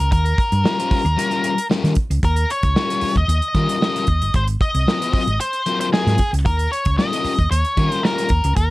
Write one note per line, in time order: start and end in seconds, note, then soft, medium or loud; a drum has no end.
0.00 0.11 A#4 medium
0.12 0.33 D#2 medium
0.12 1.67 A#4 medium
0.12 kick loud
0.12 closed hi-hat medium
0.25 closed hi-hat medium
0.38 kick loud
0.38 closed hi-hat medium
0.52 0.62 G2 medium
0.52 closed hi-hat medium
0.64 0.79 G3 medium
0.64 0.78 C#4 medium
0.64 0.78 F4 medium
0.64 0.78 A#4 medium
0.64 snare loud
0.78 1.00 G3 medium
0.78 1.00 C#4 medium
0.78 1.00 F4 medium
0.78 0.99 C5 medium
0.78 closed hi-hat medium
0.91 muted fingered electric bass stroke medium
0.91 kick loud
0.91 open hi-hat medium
1.05 1.15 D#2 medium
1.05 closed hi-hat medium
1.17 1.32 G3 medium
1.17 1.31 C#4 medium
1.17 1.31 F4 medium
1.17 1.30 A#4 medium
1.17 closed hi-hat medium
1.31 1.53 G3 medium
1.31 1.53 C#4 medium
1.31 1.52 F4 medium
1.31 1.52 A#4 medium
1.31 closed hi-hat medium
1.44 closed hi-hat medium
1.58 closed hi-hat medium
1.70 1.92 G3 medium
1.70 1.92 C#4 medium
1.70 1.92 F4 medium
1.70 1.92 A#4 medium
1.70 snare loud
1.84 1.94 D#3 loud
1.84 snare soft
1.84 closed hi-hat medium
1.95 kick medium
1.95 closed hi-hat medium
2.10 2.20 C#2 medium
2.10 closed hi-hat medium
2.23 2.44 D#2 loud
2.23 2.51 A#4 loud
2.23 kick loud
2.23 closed hi-hat medium
2.36 closed hi-hat medium
2.50 3.17 C#5 loud
2.50 closed hi-hat medium
2.63 2.73 C#2 loud
2.63 kick loud
2.63 closed hi-hat medium
2.76 2.90 G3 medium
2.76 2.90 C#4 medium
2.76 2.89 F4 medium
2.76 2.89 A#4 medium
2.76 snare loud
2.90 3.11 G3 medium
2.90 3.11 C#4 medium
2.90 3.11 F4 medium
2.90 3.11 A#4 medium
2.90 closed hi-hat medium
3.01 muted fingered electric bass stroke medium
3.01 open hi-hat medium
3.16 3.26 D#2 medium
3.16 4.35 D#5 loud
3.16 kick medium
3.16 closed hi-hat medium
3.28 3.39 D#2 loud
3.28 closed hi-hat loud
3.42 closed hi-hat soft
3.55 3.66 D#3 medium
3.55 3.76 G3 loud
3.55 3.77 C#4 loud
3.55 3.77 F4 loud
3.55 3.77 A#4 loud
3.55 kick medium
3.55 closed hi-hat medium
3.69 closed hi-hat medium
3.81 4.03 G3 medium
3.81 4.03 C#4 loud
3.81 4.04 F4 loud
3.81 4.04 A#4 medium
3.81 snare loud
3.96 snare soft
3.96 closed hi-hat medium
4.07 4.19 D#2 loud
4.07 kick medium
4.07 closed hi-hat medium
4.22 4.32 G1 loud
4.22 closed hi-hat medium
4.34 4.55 G#1 loud
4.34 4.43 C5 loud
4.34 kick loud
4.34 closed hi-hat medium
4.48 closed hi-hat medium
4.61 5.12 D#5 loud
4.61 kick loud
4.61 closed hi-hat medium
4.75 4.84 C2 medium
4.75 closed hi-hat medium
4.88 5.02 F#3 medium
4.88 5.02 C4 medium
4.88 5.01 F4 medium
4.88 5.01 A#4 medium
4.88 snare loud
5.01 5.23 F#3 medium
5.01 5.23 C4 medium
5.01 5.22 F4 medium
5.01 5.22 C5 medium
5.01 closed hi-hat medium
5.13 5.38 D#5 loud
5.13 muted fingered electric bass stroke medium
5.13 kick loud
5.13 open hi-hat medium
5.27 5.37 G#1 medium
5.27 closed hi-hat medium
5.41 5.78 C5 loud
5.41 closed hi-hat loud
5.53 closed hi-hat soft
5.66 5.88 F#3 medium
5.66 5.88 C4 loud
5.66 5.88 F4 medium
5.66 5.89 A#4 loud
5.66 closed hi-hat medium
5.81 5.86 C5 medium
5.81 closed hi-hat medium
5.92 6.14 F#3 loud
5.92 6.14 C4 medium
5.92 6.15 F4 medium
5.92 6.30 G#4 medium
5.92 6.15 A#4 medium
5.92 snare loud
6.07 6.16 G#2 loud
6.07 snare soft
6.07 closed hi-hat soft
6.18 kick loud
6.18 closed hi-hat medium
6.33 6.46 C#2 loud
6.33 closed hi-hat medium
6.46 6.66 D#2 loud
6.46 6.70 A#4 loud
6.46 kick loud
6.46 closed hi-hat medium
6.59 closed hi-hat medium
6.72 6.97 C#5 medium
6.72 closed hi-hat medium
6.85 6.96 C#2 medium
6.85 kick loud
6.85 closed hi-hat medium
6.98 7.13 G3 medium
6.98 7.12 C#4 medium
6.98 7.11 F4 medium
6.98 7.10 A#4 medium
6.98 7.50 D#5 medium
6.98 snare loud
7.12 7.34 G3 medium
7.12 7.34 C#4 medium
7.12 7.33 F4 medium
7.12 7.33 A#4 medium
7.12 closed hi-hat medium
7.24 muted fingered electric bass stroke medium
7.24 open hi-hat medium
7.39 7.48 D#2 medium
7.39 kick medium
7.39 closed hi-hat medium
7.51 7.62 D#2 loud
7.51 7.91 C#5 loud
7.51 closed hi-hat loud
7.65 closed hi-hat soft
7.77 7.88 D#3 medium
7.77 7.99 G3 medium
7.77 7.99 C#4 medium
7.77 7.99 F4 medium
7.77 8.00 A#4 loud
7.77 kick loud
7.77 closed hi-hat medium
7.91 8.05 C5 loud
7.91 closed hi-hat medium
8.03 8.25 G3 medium
8.03 8.25 C#4 medium
8.03 8.26 F4 medium
8.03 8.53 A#4 medium
8.03 8.26 A#4 medium
8.03 snare loud
8.18 snare soft
8.18 closed hi-hat medium
8.29 8.41 D#2 loud
8.29 kick loud
8.29 closed hi-hat medium
8.44 8.54 C#2 loud
8.44 closed hi-hat medium
8.57 8.70 D#2 loud
8.57 8.70 A#4 medium
8.57 kick loud
8.57 closed hi-hat medium